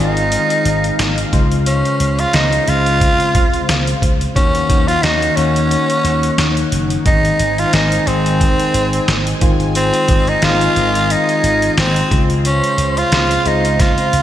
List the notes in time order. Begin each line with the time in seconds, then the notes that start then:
Already playing: D#3 D#4 F4 G#4 F5
0.00 G#1 G#3 C4 D#4 G#4
0.17 closed hi-hat
0.32 closed hi-hat
0.50 closed hi-hat
0.65 G#1, closed hi-hat
0.84 closed hi-hat
0.99 G#1, snare, closed hi-hat
1.18 closed hi-hat
1.32 C#2 C#3 G#3 F4 C5, kick, closed hi-hat
1.52 closed hi-hat
1.66 C#4, closed hi-hat
1.85 closed hi-hat
2.00 C#2, closed hi-hat
2.19 F4, closed hi-hat
2.33 C#2 C#3 G#3 C4 D#4 F4, snare, closed hi-hat
2.53 closed hi-hat
2.67 C#2 C#3 G#3 C4 F4, closed hi-hat
2.86 closed hi-hat
3.01 kick, closed hi-hat
3.20 closed hi-hat
3.35 C#2, kick, closed hi-hat
3.54 closed hi-hat
3.69 C#2, snare, closed hi-hat
3.87 closed hi-hat
4.02 C#2, kick, closed hi-hat
4.21 closed hi-hat
4.35 D#2 D#3 A#3 C#4 D#4 F#4 C#5 F#5, kick, closed hi-hat
4.55 closed hi-hat
4.70 D#2, kick, closed hi-hat
4.88 F4, closed hi-hat
5.03 D#2 D#3 A#3 C#4 D#4 F#4, snare, closed hi-hat
5.22 closed hi-hat
5.36 D#2 D#3 A#3 C#4 F#4, closed hi-hat
5.56 closed hi-hat
5.71 closed hi-hat
5.90 closed hi-hat
6.04 D#2, closed hi-hat
6.23 closed hi-hat
6.38 D#2, snare, closed hi-hat
6.57 closed hi-hat
6.72 F#1, closed hi-hat
6.90 closed hi-hat
7.05 G#1 D#3 G#3 C4 D#4 G#4 C5 G#5, kick, closed hi-hat
7.25 closed hi-hat
7.39 G#1, closed hi-hat
7.58 F4, closed hi-hat
7.73 G#1 D#3 G#3 C4 D#4 G#4, snare, closed hi-hat
7.92 closed hi-hat
8.06 G#1 D#3 G#3 C4 G#4, closed hi-hat
8.26 closed hi-hat
8.41 kick, closed hi-hat
8.59 closed hi-hat
8.74 G#1, closed hi-hat
8.93 closed hi-hat
9.08 G#1, snare, closed hi-hat
9.27 closed hi-hat
9.41 G#1 D#3 G#3 C4 F4 D#5, kick, closed hi-hat
9.60 closed hi-hat
9.75 C4, closed hi-hat
9.94 closed hi-hat
10.08 G#1, kick, closed hi-hat
10.27 D#4, closed hi-hat
10.42 G#1 D#3 G#3 C4 D#4 F4, snare, closed hi-hat
10.61 closed hi-hat
10.76 G#1 D#3 G#3 C4 G#4, closed hi-hat
10.95 closed hi-hat
11.10 D#4, closed hi-hat
11.29 closed hi-hat
11.44 G#1, closed hi-hat
11.62 closed hi-hat
11.77 G#1 C4, snare, closed hi-hat
11.96 closed hi-hat
12.11 C#2 C#3 G#3 D#4 C5 C6, kick, closed hi-hat
12.18 F4
12.30 closed hi-hat
12.45 C#4, closed hi-hat
12.64 closed hi-hat
12.78 C#2, closed hi-hat
12.97 F4, closed hi-hat
13.12 C#2 C#3 G#3 C4 F4, snare, closed hi-hat
13.31 closed hi-hat
13.45 C#2 C#3 G#3 C4 D#4 F4, closed hi-hat
13.65 closed hi-hat
13.79 F4, kick, snare, closed hi-hat
13.98 closed hi-hat
14.13 C#2, closed hi-hat